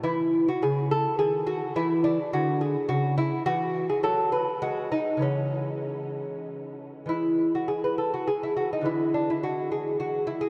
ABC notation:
X:1
M:3/4
L:1/16
Q:1/4=104
K:C#m
V:1 name="Lute"
E3 F G2 A2 G2 F2 | E2 =D2 F2 G2 F2 E2 | F3 G A2 B2 F2 D2 | C8- C2 z2 |
[K:E] E3 F G B A F G E F D | E2 =D E F2 G2 F2 E G |]
V:2 name="Lute" clef=bass
E,4 C,4 D,4 | E,4 =D,4 C,4 | E,4 F,4 G,4 | [C,E,G,]12 |
[K:E] [E,G,]12 | [=D,E,G,]12 |]